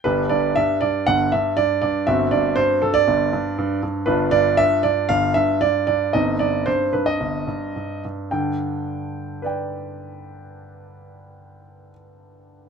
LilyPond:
<<
  \new Staff \with { instrumentName = "Grand piano" } { \time 4/4 \key g \major \tempo 4 = 114 << { b'8 d''8 e''8 d''8 fis''8 e''8 d''8 d''8 | e''8 d''8 c''8 a'16 d''4.~ d''16 r8 | b'8 d''8 e''8 d''8 f''8 e''8 d''8 d''8 | ees''8 d''8 c''8 b'16 ees''4.~ ees''16 r8 |
g''1~ | g''1 | } \\ { <d' g'>1 | <c' fis'>1 | <d' f'>1 | <c' ees'>1 |
r2 <b' d'' g''>2~ | <b' d'' g''>1 | } >> }
  \new Staff \with { instrumentName = "Grand piano" } { \clef bass \time 4/4 \key g \major <g,, g,>8 g,8 g,8 g,8 <g,, g,>8 g,8 g,8 g,8 | <g,, g,>8 g,8 g,8 g,8 <g,, g,>8 g,8 g,8 g,8 | <g,, g,>8 g,8 g,8 g,8 <g,, g,>8 g,8 g,8 g,8 | <g,, g,>8 g,8 g,8 g,8 <g,, g,>8 g,8 g,8 g,8 |
<g, d>1~ | <g, d>1 | }
>>